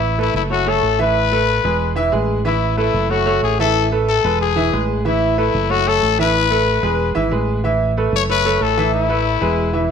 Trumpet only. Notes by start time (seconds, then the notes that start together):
Already playing: E4
0.21 E4
0.36 E4
0.51 F#4
0.69 A4
1.02 B4
2.47 E4
2.78 E4
3.10 F#4
3.44 G#4
3.60 A4
4.09 A4
4.41 G#4
5.07 E4
5.39 E4
5.71 F#4
5.88 A4
6.21 B4
8.16 C#5
8.31 B4
8.62 A4
8.94 E4